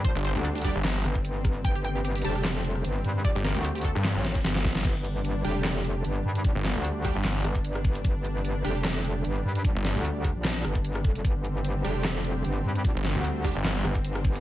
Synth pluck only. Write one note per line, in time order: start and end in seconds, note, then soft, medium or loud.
0.05 0.10 C5 loud
0.15 0.20 D4 medium
0.25 0.30 C5 loud
0.35 0.40 D4 medium
0.45 0.50 D4 medium
0.55 0.60 D4 medium
0.65 1.57 D5 loud
1.65 1.70 G5 loud
1.75 1.80 G4 medium
1.85 1.90 G5 loud
1.95 2.00 G4 medium
2.05 2.10 G4 medium
2.15 2.20 G4 medium
2.25 3.17 A5 loud
3.25 3.30 D5 loud
3.35 3.40 G4 medium
3.45 3.50 A#4 medium
3.55 3.60 G4 medium
3.65 3.70 G4 medium
3.75 3.80 G4 medium
3.85 4.77 A4 medium